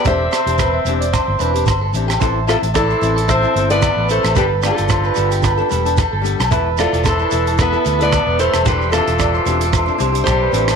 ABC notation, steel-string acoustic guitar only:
X:1
M:4/4
L:1/16
Q:"Swing 16ths" 1/4=112
K:Am
V:1 name="Steel-string acoustic guitar"
[ce]12 z4 | z2 [FA]2 [EA]4 [ce]3 [Bd]3 [Ac]2 | [GB]2 [FA]8 z6 | z2 [FA]2 [EA]4 [Be]3 [Bd]3 [Ac]2 |
[GB]2 [FA]8 z2 [Gc]4 |]